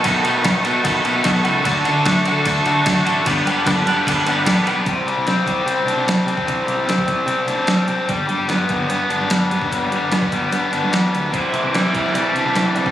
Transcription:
<<
  \new Staff \with { instrumentName = "Overdriven electric guitar" } { \time 4/4 \key g \major \tempo 4 = 148 <b, dis fis b dis' a'>8 <b, dis fis b dis' a'>8 <b, dis fis b dis' a'>8 <b, dis fis b dis' a'>8 <b, dis fis b dis' a'>8 <b, dis fis b dis' a'>8 <b, dis fis b dis' a'>8 <b, dis fis b dis' a'>8 | <d d' fis' a'>8 <d d' fis' a'>8 <d d' fis' a'>8 <d d' fis' a'>8 <d d' fis' a'>8 <d d' fis' a'>8 <d d' fis' a'>8 <d d' fis' a'>8 | <g b d' b'>8 <g b d' b'>8 <g b d' b'>8 <g b d' b'>8 <g b d' b'>8 <g b d' b'>8 <g b d' b'>8 <g b d' b'>8 | r1 |
r1 | r1 | r1 | <c e g c' e'>1 | }
  \new Staff \with { instrumentName = "Overdriven electric guitar" } { \time 4/4 \key g \major <b, dis a b fis'>8 <b, dis a b fis'>8 <b, dis a b fis'>8 <b, dis a b fis'>8 <b, dis a b fis'>8 <b, dis a b fis'>8 <b, dis a b fis'>8 <b, dis a b fis'>8 | <d a d' fis'>8 <d a d' fis'>8 <d a d' fis'>8 <d a d' fis'>8 <d a d' fis'>8 <d a d' fis'>8 <d a d' fis'>8 <d a d' fis'>8 | <g, d g b d' g'>8 <g, d g b d' g'>8 <g, d g b d' g'>8 <g, d g b d' g'>8 <g, d g b d' g'>8 <g, d g b d' g'>8 <g, d g b d' g'>8 <g, d g b d' g'>8 | c8 g8 c'8 g8 c'8 d'8 g8 c'8 |
c8 g8 c'8 g8 c'8 d'8 g8 c'8 | g8 g8 b8 g8 b8 d'8 g8 b8 | g8 g8 b8 g8 b8 d'8 g8 b8 | c8 e8 g8 e8 g8 d'8 e8 g8 | }
  \new Staff \with { instrumentName = "Fingered electric bass" } { \clef bass \time 4/4 \key g \major b,,8 b,8 b,,8 b,8 b,,8 b,8 b,,8 cis,8 | d,8 d8 d,8 d8 d,8 d8 d,8 a,,8 | g,,8 g,8 g,,8 g,8 g,,8 g,,8 a,,8 b,,8 | c,8 c16 c,16 c8 c,8 c16 r16 c,16 c16 c,8 c8 |
c,8 c16 c,16 c8 c,8 c16 r16 c,16 c16 c,8 c8 | g,,8 g,16 g,,16 g,8 g,,8 g,16 r16 g,,16 g,16 g,,8 g,8 | g,,8 g,16 g,,16 g,8 g,,8 g,16 r16 g,,16 g,16 e,8 d,8 | c,8 c16 c,16 c8 c,8 c16 r16 c,16 c16 c,8 c8 | }
  \new DrumStaff \with { instrumentName = "Drums" } \drummode { \time 4/4 <bd cymr>8 cymr8 <bd cymr sn>8 cymr8 <bd cymr>8 cymr8 <bd cymr sn>8 cymr8 | <bd cymr>8 cymr8 <bd cymr sn>8 cymr8 <bd cymr>16 sn16 cymr8 <bd cymr sn>8 cymr8 | <bd cymr>8 cymr8 <bd cymr sn>8 cymr8 <bd cymr>8 cymr8 <bd cymr sn>8 cymr8 | <hh bd>8 hh8 <hh sn>8 <hh bd>8 hh8 hh8 <hh sn>8 hh16 bd16 |
<hh bd>8 hh8 <hh sn>16 bd16 <hh bd>8 hh8 hh8 <hh sn>8 hh8 | <hh bd>8 hh8 <hh sn>8 <hh bd>8 hh8 hh8 <hh sn>8 hh16 bd16 | <hh bd>8 hh8 <hh sn>16 bd16 <hh bd>8 hh8 hh8 <hh sn>8 hh8 | <hh bd>8 hh8 <hh sn>8 <hh bd>16 sn16 hh8 hh8 <hh sn>8 hh16 bd16 | }
>>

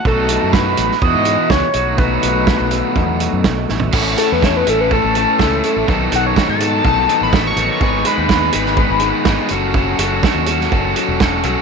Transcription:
<<
  \new Staff \with { instrumentName = "Analog synth lead" } { \time 4/4 \key b \mixolydian \tempo 4 = 124 a'4 b'4 dis''4 cis''4 | b'2. r4 | r8 a'16 b'16 cis''16 b'16 a'16 b'16 a'2 | r8 fis''16 cis''8 a''4. b''8 cis'''8 cis'''16~ |
cis'''8 b''2. r8 | r1 | }
  \new Staff \with { instrumentName = "Overdriven electric guitar" } { \time 4/4 \key b \mixolydian <b, fis a dis' fis'>2 <e, b, e b e' fis'>4. <b, fis a dis' fis'>8~ | <b, fis a dis' fis'>1 | <a cis' e' a'>8 <a cis' e' a'>8 <a cis' e' a'>8 <a cis' e' a'>8 <a cis' e' a'>8 <a cis' e' a'>8 <a cis' e' a'>8 <a cis' e' a'>8 | <b, dis fis b dis' a'>8 <b, dis fis b dis' a'>8 <b, dis fis b dis' a'>8 <b, dis fis b dis' a'>8 <b, dis fis b dis' a'>8 <b, dis fis b dis' a'>8 <b, dis fis b dis' a'>8 <b, dis fis b dis' a'>8 |
<gis, dis gis b dis' gis'>8 <gis, dis gis b dis' gis'>8 <gis, dis gis b dis' gis'>8 <gis, dis gis b dis' gis'>8 <gis, dis gis b dis' gis'>8 <gis, dis gis b dis' gis'>8 <gis, dis gis b dis' gis'>8 <fis cis' fis' a'>8 | <fis cis' fis' a'>8 <fis cis' fis' a'>8 <fis cis' fis' a'>8 <fis cis' fis' a'>8 <fis cis' fis' a'>8 <fis cis' fis' a'>8 <fis cis' fis' a'>8 <fis cis' fis' a'>8 | }
  \new Staff \with { instrumentName = "Overdriven electric guitar" } { \time 4/4 \key b \mixolydian <b, fis a dis' fis'>2 <e, b, e b e' fis'>4. <b, fis a dis' fis'>8~ | <b, fis a dis' fis'>1 | <a, a cis' e' a'>8 <a, a cis' e' a'>8 <a, a cis' e' a'>8 <a, a cis' e' a'>8 <a, a cis' e' a'>8 <a, a cis' e' a'>8 <a, a cis' e' a'>8 <a, a cis' e' a'>8 | <b, dis fis b dis' a'>8 <b, dis fis b dis' a'>8 <b, dis fis b dis' a'>8 <b, dis fis b dis' a'>8 <b, dis fis b dis' a'>8 <b, dis fis b dis' a'>8 <b, dis fis b dis' a'>8 <b, dis fis b dis' a'>8 |
<gis, dis gis b dis' b'>8 <gis, dis gis b dis' b'>8 <gis, dis gis b dis' b'>8 <gis, dis gis b dis' b'>8 <gis, dis gis b dis' b'>8 <gis, dis gis b dis' b'>8 <gis, dis gis b dis' b'>8 <fis cis' fis' a'>8 | <fis cis' fis' a'>8 <fis cis' fis' a'>8 <fis cis' fis' a'>8 <fis cis' fis' a'>8 <fis cis' fis' a'>8 <fis cis' fis' a'>8 <fis cis' fis' a'>8 <fis cis' fis' a'>8 | }
  \new Staff \with { instrumentName = "Fingered electric bass" } { \clef bass \time 4/4 \key b \mixolydian b,,8. fis,8. a,,16 r16 e,16 gis,8 r16 cis,16 r16 b,,8~ | b,,8 b,,8. b,,8 r16 e,8. fis,16 b,,8 a,,8 | a,,8 r16 e,8. a,,8. a,,8 r16 cis,8 r16 a,,16 | b,,8 b,,8 r16 gis,8. b,,8 r16 a,,8. a,,16 r16 |
gis,,8 r16 dis,8. gis,,8. gis,,8 r16 gis,,16 r16 fis,,8~ | fis,,8 fis,,8 r16 dis,8. fis,,8 r16 e,,8. b,,16 r16 | }
  \new DrumStaff \with { instrumentName = "Drums" } \drummode { \time 4/4 bd8 hh8 <bd sn>8 hh16 sn16 bd8 hh8 <bd sn>8 hh8 | bd8 hh8 <bd sn>8 hh8 bd8 hh8 <bd sn>8 sn16 tomfh16 | <cymc bd>8 hh8 <bd sn>8 hh8 bd8 hh8 <bd sn>8 hh8 | bd8 hh8 <bd sn>8 hh8 bd8 hh8 <bd sn>8 hh8 |
bd8 hh8 <bd sn>8 hh16 sn16 bd8 hh8 <bd sn>8 hh8 | bd8 hh8 <bd sn>8 hh16 sn16 bd8 hh8 <bd sn>8 hh8 | }
>>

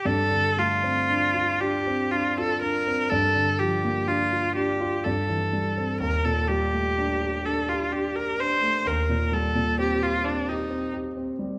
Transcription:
<<
  \new Staff \with { instrumentName = "Viola" } { \time 3/4 \key g \minor \tempo 4 = 62 a'8 f'4 g'8 f'16 a'16 bes'8 | a'8 g'8 f'8 g'8 a'4 | bes'16 a'16 g'4 a'16 f'16 g'16 bes'16 c''8 | bes'8 a'8 g'16 f'16 d'16 ees'8 r8. | }
  \new Staff \with { instrumentName = "Grand piano" } { \time 3/4 \key g \minor g,16 d16 a16 c'16 d'16 f'16 d'16 c'16 d'16 f'16 d'16 c'16 | g,16 d16 f16 bes16 d'16 f'16 d'16 f'16 g,16 e16 g16 c'16 | ees,16 bes,16 g16 a16 d'16 g'16 d'16 g'16 d'16 g'16 d'16 a16 | ees,16 bes,16 g16 bes,16 c'16 g'16 c'16 g'16 c'16 g'16 c'16 g16 | }
>>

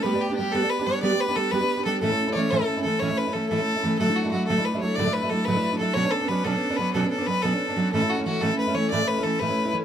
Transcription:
<<
  \new Staff \with { instrumentName = "Fiddle" } { \time 12/8 \key a \mixolydian \tempo 4. = 122 b'8 g'8 g'8 a'8 b'8 cis''8 d''8 b'8 a'8 b'4 a'8 | a'8.~ a'32 d''32 cis''8 a'4 a'8 cis''8 b'8 a'8 a'4. | a'8 fis'8 fis'8 a'8 b'8 cis''8 d''8 b'8 a'8 b'4 a'8 | cis''8 a'8 b'8 a'4 b'8 a'8 a'8 b'8 a'4. |
a'8 fis'8 fis'8 a'8 b'8 cis''8 d''8 b'8 a'8 b'4 r8 | }
  \new Staff \with { instrumentName = "Twelve-string acoustic guitar" } { \time 12/8 \key a \mixolydian <g b d' g'>16 <b d' g'>8 <b d' g'>16 <g b d' g'>8 <g b d' g'>16 <b d' g'>8 <b d' g'>16 <g b d' g'>8 <g b d' g'>16 <b d' g'>8 <b d' g'>16 <g b d' g'>8 <g b d' g'>16 <b d' g'>8 <b d' g'>16 <g b d' g'>8 | <a, e a cis' e'>16 <a cis' e'>8 <a cis' e'>16 <e a cis' e'>8 <a, e a cis' e'>16 <a cis' e'>8 <a cis' e'>16 <e a cis' e'>8 <a, e a cis' e'>16 <a cis' e'>8 <a cis' e'>16 <e a cis' e'>8 <a, e a cis' e'>16 <a cis' e'>8 <a cis' e'>16 <e a cis' e'>8 | <d, a, fis a d' e'>16 <fis a d' e'>8 <fis a d' e'>16 <fis a d' e'>8 <d, a, fis a d' e'>16 <fis a d' e'>8 <fis a d' e'>16 <fis a d' e'>8 <d, a, fis a d' e'>16 <fis a d' e'>8 <fis a d' e'>16 <fis a d' e'>8 <d, a, fis a d' e'>16 <fis a d' e'>8 <fis a d' e'>16 <fis a d' e'>8 | <b, fis b cis' d'>16 <b cis' d'>8 <b cis' d'>16 <fis b cis' d'>8 <b, fis b cis' d'>16 <b cis' d'>8 <b cis' d'>16 <fis b cis' d'>8 <b, fis b cis' d'>16 <b cis' d'>8 <b cis' d'>16 <fis b cis' d'>8 <b, fis b cis' d'>16 <b cis' d'>8 <b cis' d'>16 <fis b cis' d'>8 |
<a, e a cis' e'>16 <a cis' e'>8 <a cis' e'>16 <e a cis' e'>8 <a, e a cis' e'>16 <a cis' e'>8 <a cis' e'>16 <e a cis' e'>8 <a, e a cis' e'>16 <a cis' e'>8 <a cis' e'>16 <e a cis' e'>8 <a, e a cis' e'>16 <a cis' e'>8 <a cis' e'>16 <e a cis' e'>8 | }
>>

